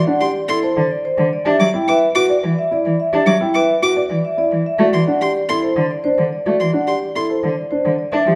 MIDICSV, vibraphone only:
0, 0, Header, 1, 2, 480
1, 0, Start_track
1, 0, Tempo, 555556
1, 1264, Time_signature, 3, 2, 24, 8
1, 7217, End_track
2, 0, Start_track
2, 0, Title_t, "Vibraphone"
2, 0, Program_c, 0, 11
2, 60, Note_on_c, 0, 78, 62
2, 179, Note_on_c, 0, 74, 77
2, 219, Note_off_c, 0, 78, 0
2, 338, Note_off_c, 0, 74, 0
2, 422, Note_on_c, 0, 69, 68
2, 546, Note_on_c, 0, 72, 86
2, 579, Note_off_c, 0, 69, 0
2, 700, Note_off_c, 0, 72, 0
2, 786, Note_on_c, 0, 74, 66
2, 908, Note_on_c, 0, 72, 78
2, 940, Note_off_c, 0, 74, 0
2, 1061, Note_off_c, 0, 72, 0
2, 1149, Note_on_c, 0, 74, 69
2, 1270, Note_on_c, 0, 76, 79
2, 1302, Note_off_c, 0, 74, 0
2, 1422, Note_off_c, 0, 76, 0
2, 1513, Note_on_c, 0, 79, 64
2, 1625, Note_on_c, 0, 76, 82
2, 1663, Note_off_c, 0, 79, 0
2, 1780, Note_off_c, 0, 76, 0
2, 1873, Note_on_c, 0, 71, 69
2, 1992, Note_on_c, 0, 74, 83
2, 2023, Note_off_c, 0, 71, 0
2, 2143, Note_off_c, 0, 74, 0
2, 2233, Note_on_c, 0, 76, 67
2, 2352, Note_on_c, 0, 74, 82
2, 2383, Note_off_c, 0, 76, 0
2, 2503, Note_off_c, 0, 74, 0
2, 2590, Note_on_c, 0, 76, 69
2, 2699, Note_off_c, 0, 76, 0
2, 2709, Note_on_c, 0, 76, 82
2, 2862, Note_off_c, 0, 76, 0
2, 2948, Note_on_c, 0, 79, 64
2, 3065, Note_on_c, 0, 76, 74
2, 3101, Note_off_c, 0, 79, 0
2, 3220, Note_off_c, 0, 76, 0
2, 3308, Note_on_c, 0, 71, 64
2, 3427, Note_on_c, 0, 74, 76
2, 3461, Note_off_c, 0, 71, 0
2, 3581, Note_off_c, 0, 74, 0
2, 3670, Note_on_c, 0, 76, 66
2, 3787, Note_on_c, 0, 74, 76
2, 3822, Note_off_c, 0, 76, 0
2, 3941, Note_off_c, 0, 74, 0
2, 4030, Note_on_c, 0, 76, 64
2, 4144, Note_on_c, 0, 74, 73
2, 4182, Note_off_c, 0, 76, 0
2, 4300, Note_off_c, 0, 74, 0
2, 4384, Note_on_c, 0, 78, 56
2, 4500, Note_on_c, 0, 74, 72
2, 4540, Note_off_c, 0, 78, 0
2, 4658, Note_off_c, 0, 74, 0
2, 4746, Note_on_c, 0, 69, 61
2, 4860, Note_on_c, 0, 72, 70
2, 4900, Note_off_c, 0, 69, 0
2, 5019, Note_off_c, 0, 72, 0
2, 5104, Note_on_c, 0, 74, 59
2, 5218, Note_on_c, 0, 72, 70
2, 5260, Note_off_c, 0, 74, 0
2, 5378, Note_off_c, 0, 72, 0
2, 5464, Note_on_c, 0, 74, 57
2, 5573, Note_off_c, 0, 74, 0
2, 5584, Note_on_c, 0, 74, 73
2, 5740, Note_off_c, 0, 74, 0
2, 5825, Note_on_c, 0, 78, 53
2, 5944, Note_on_c, 0, 74, 60
2, 5980, Note_off_c, 0, 78, 0
2, 6100, Note_off_c, 0, 74, 0
2, 6185, Note_on_c, 0, 69, 59
2, 6309, Note_on_c, 0, 72, 66
2, 6340, Note_off_c, 0, 69, 0
2, 6462, Note_off_c, 0, 72, 0
2, 6543, Note_on_c, 0, 74, 51
2, 6659, Note_on_c, 0, 72, 65
2, 6699, Note_off_c, 0, 74, 0
2, 6818, Note_off_c, 0, 72, 0
2, 6899, Note_on_c, 0, 74, 56
2, 7014, Note_on_c, 0, 76, 80
2, 7058, Note_off_c, 0, 74, 0
2, 7176, Note_off_c, 0, 76, 0
2, 7217, End_track
0, 0, End_of_file